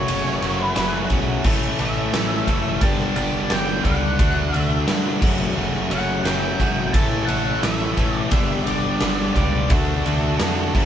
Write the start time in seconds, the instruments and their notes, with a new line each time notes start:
Already playing: overdriven electric guitar F#2 C#3 F#3, lead electric guitar C#5
0.08 picked electric bass F#1, overdriven electric guitar F#2 C#3 F#3 A3 C#4 F#4, ride
0.25 snare
0.42 picked electric bass F#1, overdriven electric guitar F#2 C#3 F#3 A3 C#4 F#4, snare, ride
0.64 lead electric guitar B4
0.76 picked electric bass F#1, overdriven electric guitar F#2 C#3 F#3 A3 C#4 F#4, snare, ride
1.10 picked electric bass B1, overdriven electric guitar F#2 C#3 F#3 A3 C#4 F#4, kick, ride
1.44 picked electric bass A1, overdriven electric guitar A2 E3 A3 C#4 A4, kick, crash
1.79 picked electric bass A1, overdriven electric guitar A2 E3 A3 C#4 A4, lead electric guitar E5, ride
2.13 picked electric bass A1, overdriven electric guitar A2 E3 A3 C#4 A4, snare, ride
2.47 picked electric bass F#1, overdriven electric guitar A2 E3 A3 C#4 A4, kick, ride
2.81 picked electric bass G1, overdriven electric guitar G2 D3 G3 B3 D4 G4, lead electric guitar A5, kick, ride
2.99 snare
3.16 picked electric bass G1, overdriven electric guitar G2 D3 G3 B3 D4 G4, lead electric guitar A5, ride
3.50 picked electric bass G1, overdriven electric guitar G2 D3 G3 B3 D4 G4, lead electric guitar G5, snare, ride
3.83 picked electric bass C#2, overdriven electric guitar G2 D3 G3 B3 D4 G4, lead electric guitar F#5, kick, ride
4.18 picked electric bass D2, overdriven electric guitar D3 A3 D4 F#4, kick, ride
4.53 picked electric bass D2, overdriven electric guitar D3 A3 D4 F#4, lead electric guitar E5, ride
4.87 picked electric bass G2, overdriven electric guitar D3 A3 D4 F#4, snare, ride
5.21 picked electric bass F#1, overdriven electric guitar F#2 C#3 F#3 A3 C#4 F#4, kick, crash
5.54 picked electric bass F#1, overdriven electric guitar F#2 C#3 F#3 A3 C#4 F#4
5.74 snare
5.89 picked electric bass F#1, overdriven electric guitar F#2 C#3 F#3 A3 C#4 F#4, lead electric guitar F#5, ride
6.24 picked electric bass F#1, overdriven electric guitar F#2 C#3 F#3 A3 C#4 F#4, lead electric guitar G5, snare, ride
6.58 picked electric bass G#1, overdriven electric guitar F#2 C#3 F#3 A3 C#4 F#4, kick, ride
6.93 picked electric bass A1, overdriven electric guitar A2 E3 A3 C#4 A4, lead electric guitar A5, kick, ride
7.26 picked electric bass A1, overdriven electric guitar A2 E3 A3 C#4 A4, lead electric guitar F#5, ride
7.62 picked electric bass A1, overdriven electric guitar A2 E3 A3 C#4 A4, lead electric guitar E5, snare, ride
7.96 picked electric bass A1, overdriven electric guitar A2 E3 A3 C#4 A4, kick, ride
8.17 lead electric guitar D5
8.30 picked electric bass G1, overdriven electric guitar G2 D3 G3 B3 D4 G4, lead electric guitar E5, kick, ride
8.65 picked electric bass G1, overdriven electric guitar G2 D3 G3 B3 D4 G4, lead electric guitar D5, snare, ride
9.00 picked electric bass G1, overdriven electric guitar G2 D3 G3 B3 D4 G4, snare, ride
9.19 snare
9.34 picked electric bass C#2, overdriven electric guitar G2 D3 G3 B3 D4 G4, lead electric guitar D5, kick, ride
9.70 picked electric bass D2, overdriven electric guitar D3 A3 D4 F#4, lead electric guitar A4, kick, ride
10.04 picked electric bass D2, overdriven electric guitar D3 A3 D4 F#4, ride
10.39 picked electric bass F2, overdriven electric guitar D3 A3 D4 F#4, snare, ride
10.74 picked electric bass F#1, overdriven electric guitar F#2 C#3 F#3 A3 C#4 F#4, kick, crash